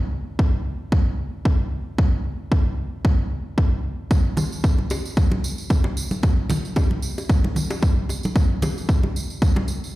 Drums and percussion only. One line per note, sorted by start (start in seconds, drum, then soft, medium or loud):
0.39 kick medium
0.92 kick loud
1.45 kick medium
1.98 kick loud
2.52 kick medium
3.05 kick loud
3.58 kick medium
4.11 kick loud
4.11 tambourine soft
4.37 tambourine medium
4.37 high bongo soft
4.37 high conga medium
4.37 low conga medium
4.52 tambourine soft
4.64 kick loud
4.64 tambourine soft
4.78 high conga medium
4.90 tambourine medium
4.90 high bongo medium
5.05 tambourine soft
5.17 kick loud
5.17 tambourine soft
5.32 high bongo soft
5.32 high conga medium
5.44 tambourine medium
5.58 tambourine soft
5.70 kick medium
5.70 tambourine soft
5.70 high conga medium
5.84 high bongo medium
5.97 tambourine medium
6.11 tambourine soft
6.11 high conga medium
6.23 kick loud
6.23 tambourine soft
6.23 high bongo soft
6.49 tambourine medium
6.49 high conga medium
6.49 low conga medium
6.65 tambourine soft
6.76 kick medium
6.76 tambourine soft
6.76 high bongo medium
6.91 high conga medium
7.02 tambourine medium
7.18 tambourine soft
7.18 high bongo soft
7.30 kick loud
7.30 tambourine soft
7.44 high conga medium
7.56 tambourine medium
7.56 low conga medium
7.70 tambourine soft
7.70 high bongo medium
7.82 kick loud
7.82 tambourine soft
7.82 high conga medium
8.09 tambourine medium
8.09 high bongo soft
8.23 tambourine soft
8.23 high conga medium
8.36 kick loud
8.36 tambourine soft
8.62 tambourine medium
8.62 high bongo medium
8.62 high conga medium
8.62 low conga medium
8.78 tambourine soft
8.89 kick loud
8.89 tambourine soft
9.03 high bongo soft
9.03 high conga medium
9.16 tambourine medium
9.30 tambourine soft
9.42 kick loud
9.42 tambourine soft
9.56 high bongo medium
9.56 high conga medium
9.68 tambourine medium
9.84 tambourine soft